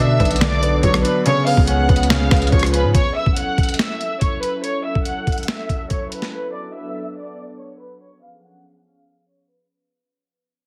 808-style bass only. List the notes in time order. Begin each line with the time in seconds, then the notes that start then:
Already playing: B2
0.20 B1
0.83 B1
1.57 C#2
1.89 C#2
2.31 C#2
2.52 C#2
2.84 G#2